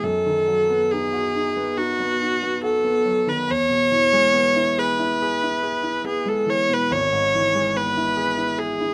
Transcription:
0.03 F#2 A4
0.26 D#3
0.48 F#3
0.70 B3
0.91 D#4 G#4
1.13 F#4
1.35 D#4
1.56 B3
1.77 D#4 F#4
2.00 B3
2.22 D#4
2.43 B3
2.63 F#4 A4
2.84 B3
3.05 F#3
3.27 D#3 B4
3.48 E2 C#5
3.69 B2
3.91 E3
4.13 G#3
4.33 B3
4.56 E4
4.78 G#4 B4
4.99 E4
5.22 G#4
5.43 E4
5.63 G#4
5.83 E4
6.04 B3 G#4
6.25 G#3 A4
6.46 E3 C#5
6.69 B2
6.73 B4
6.91 G#1 C#5
7.12 G#2
7.34 E3
7.55 G#3
7.76 B3 B4
7.97 E4
8.17 G#4
8.38 E4
8.58 G#4
8.81 E4

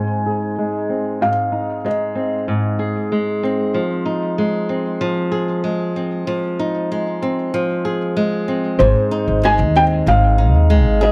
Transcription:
Already playing: G#2 G#3 C4 D#4 G#4 G#5
0.26 G#4
0.58 G#3
0.89 C4
1.21 G#2 F5
1.52 D#4
1.85 G#3 D#5
2.15 C4
2.48 G#2
2.79 G#4
3.12 G#3
3.43 C4
3.74 F3
4.06 D#4
4.38 G#3
4.69 C4
5.01 F3
5.32 G#4
5.64 G#3
5.96 C4
6.27 F3
6.59 D#4
6.92 G#3
7.22 C4
7.54 F3
7.85 G#4
8.17 G#3
8.48 C4
8.79 G#1 G#2 C5
9.11 D#4
9.28 G#1
9.43 G#3 G#5
9.59 D#2
9.76 C4 G5
10.06 G#1 G#2 F5
10.38 D#4
10.54 D#2
10.70 G#3
10.86 G#1
11.01 G#4 D#5

